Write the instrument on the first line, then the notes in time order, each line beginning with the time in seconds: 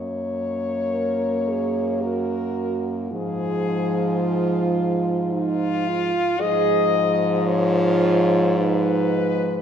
french horn
Already playing: F#2 A#3 C#5
0.92 A#4
1.48 G#4
2.01 F#4 A#4
3.11 G#2 F3 F4 G#4
5.33 D#4 F4
5.87 F4
6.40 G#2 F3 G#4 D#5
7.48 F4 C#5
8.57 D#4 B4